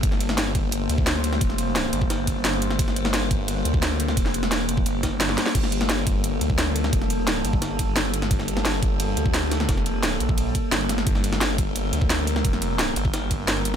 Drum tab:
CC |----------------|----------------|----------------|----------------|
RD |x-x-x-x-x-x-x-x-|x-x-x-x-x-x-xxx-|x-x-x-x-x-x-x-x-|x-x-x-x-x-x-xxx-|
HH |x-x-x-x-x-x-x-x-|x-x-x-x-x-x-x-x-|x-x-x-x-x-x-x-x-|x-x-x-x-x-x-x-x-|
SD |-o-oo-------o--o|-o--o---o---o--o|-o-oo-------o--o|-o-oo-----o-oooo|
BD |o-----o----o----|o------o--o-----|o-----o----o----|o------o--o-----|

CC |x---------------|----------------|----------------|----------------|
RD |x-x-x-x-x-x-x-x-|x-x-x-x-x-x-xxx-|x-x-x-x-x-x-x-x-|x-x-x-x-x-x-xxx-|
HH |x-x-x-x-x-x-x-x-|x-x-x-x-x-x-x-x-|x-x-x-x-x-x-x-x-|x-x-x-x-x-x-x-x-|
SD |-o-oo-------o--o|-o--o---o---o--o|-o-oo-------o-oo|oo--o-------o-oo|
BD |o-----o----o----|o------o--o-----|o-----o----o----|o------o--o-----|

CC |----------------|----------------|
RD |x-x-x-x-x-x-x-x-|x-x-x-x-x-x-xxx-|
HH |x-x-x-x-x-x-x-x-|x-x-x-x-x-x-x-x-|
SD |-o-oo-------o--o|-o--o---o---o---|
BD |o-----o----o----|o------o--o-----|